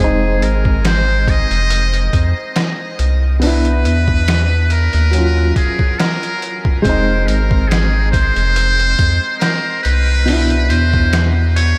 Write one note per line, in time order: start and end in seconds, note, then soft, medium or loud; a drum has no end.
0.00 0.43 F1 loud
0.00 3.33 G#3 medium
0.00 3.34 C4 medium
0.00 0.45 G#4 medium
0.04 3.37 D#4 loud
0.42 1.46 G#1 medium
0.42 0.85 A#4 medium
0.42 closed hi-hat medium
0.65 kick medium
0.85 1.31 C5 loud
0.85 snare loud
0.85 closed hi-hat medium
1.28 2.57 D#5 loud
1.28 kick medium
1.28 closed hi-hat medium
1.51 2.09 F1 loud
1.51 closed hi-hat soft
1.70 closed hi-hat medium
1.94 closed hi-hat soft
2.13 2.34 F2 medium
2.13 kick medium
2.13 closed hi-hat medium
2.56 snare loud
2.56 closed hi-hat medium
2.99 3.86 C2 medium
2.99 closed hi-hat medium
3.40 5.04 B3 medium
3.40 5.06 D4 medium
3.40 4.73 B4 loud
3.40 open hi-hat medium
3.47 5.08 E4 medium
3.65 closed hi-hat soft
3.85 4.89 E2 medium
3.85 closed hi-hat medium
4.08 kick medium
4.28 snare loud
4.28 closed hi-hat medium
4.70 5.56 A#4 medium
4.70 closed hi-hat medium
4.93 5.53 D#2 loud
4.93 closed hi-hat soft
5.11 6.76 F#3 medium
5.11 6.77 C#4 medium
5.11 closed hi-hat medium
5.18 6.79 F4 medium
5.56 6.00 G#4 medium
5.56 kick medium
5.56 closed hi-hat medium
5.79 kick medium
5.99 6.65 A#4 medium
5.99 snare loud
5.99 closed hi-hat medium
6.23 closed hi-hat soft
6.42 closed hi-hat medium
6.65 kick medium
6.82 7.29 F1 loud
6.82 10.18 G#3 medium
6.82 10.20 C4 medium
6.82 7.28 C5 medium
6.82 kick loud
6.82 closed hi-hat medium
6.89 10.22 D#4 loud
7.27 8.32 G#1 loud
7.27 7.69 A#4 medium
7.27 closed hi-hat medium
7.51 kick medium
7.68 8.11 G#4 medium
7.68 snare loud
7.68 closed hi-hat medium
8.12 9.37 C5 loud
8.12 kick medium
8.12 closed hi-hat medium
8.36 8.95 F1 loud
8.36 closed hi-hat soft
8.56 closed hi-hat medium
8.79 closed hi-hat soft
8.99 9.19 F2 medium
8.99 kick medium
8.99 closed hi-hat medium
9.40 9.80 A#4 medium
9.40 snare loud
9.40 closed hi-hat medium
9.83 10.71 C2 medium
9.83 10.71 B4 loud
9.83 closed hi-hat medium
10.26 11.78 B2 medium
10.26 11.78 D4 medium
10.26 open hi-hat medium
10.33 11.78 E4 medium
10.50 closed hi-hat soft
10.69 11.75 E2 loud
10.69 11.30 C5 loud
10.69 closed hi-hat medium
10.94 kick medium
11.13 snare loud
11.13 closed hi-hat medium
11.56 11.78 C#5 loud
11.56 closed hi-hat medium